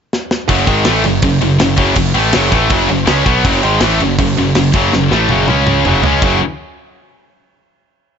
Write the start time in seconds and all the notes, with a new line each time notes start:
0.13 snare
0.31 snare
0.49 F#1 F#2 C#3 F#3, kick, crash
0.67 G#1 G#2 D#3 G#3, kick, crash
0.85 A1 A2 E3 A3, snare, crash
1.04 F#1 F#2 C#3, crash
1.22 F#1 F#2 C#3, kick, crash
1.41 F#1 F#2 C#3, crash
1.59 F#1 F#2 C#3, snare, crash
1.77 F#1 F#2 C#3 F#3, kick, crash
1.95 F#1 F#2 C#3, kick, crash
2.14 A1 A2 E3 A3, crash
2.32 F#1 F#2 C#3 F#3, snare, crash
2.50 A1 A2 E3 A3, kick, crash
2.68 F#1 F#2 C#3 F#3, kick, crash
2.88 F#1 F#2 C#3, crash
3.06 C#2 C#3 G#3 C#4, snare, crash
3.25 B1 B2 F#3 B3, kick, crash
3.44 F#1 F#2 C#3 F#3, kick, crash
3.62 G#1 G#2 D#3 G#3, crash
3.80 A1 A2 E3 A3, snare, crash
4.00 F#1 F#2 C#3, crash
4.19 F#1 F#2 C#3, kick, crash
4.37 F#1 F#2 C#3, crash
4.55 F#1 F#2 C#3, snare, crash
4.73 F#1 F#2 C#3 F#3, kick, crash
4.92 F#1 F#2 C#3, snare
5.11 A1 A2 E3 A3, snare
5.29 F#1 F#2 C#3 F#3, high tom
5.47 C#2 C#3 G#3 C#4, high tom
5.67 mid tom
5.85 F#1 F#2 C#3 F#3, mid tom
6.03 C#2 C#3 G#3 C#4, floor tom
6.22 F#1 F#2 C#3 F#3, kick, crash